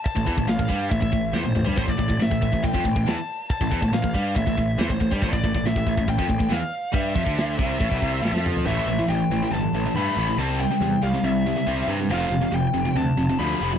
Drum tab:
CC |x---x---x-------|x---x---x---x---|x---x---x---x---|x---x---x---x---|
SD |----o-------o---|----o-------o---|----o-------o---|----o-------o---|
T1 |-------------o--|----------------|----------------|----------------|
T2 |--------------o-|----------------|----------------|----------------|
FT |---------------o|----------------|----------------|----------------|
BD |oooo-oo-ooo-----|oooo-ooooooo----|oooo-oo-ooo--ooo|oooo-ooooooo----|

CC |x---x---x-------|----------------|----------------|----------------|
SD |----o-------oo--|----------------|----------------|----------------|
T1 |----------------|----------------|----------------|----------------|
T2 |--------------o-|----------------|----------------|----------------|
FT |---------------o|----------------|----------------|----------------|
BD |o-oo--o-ooo-----|----------------|----------------|----------------|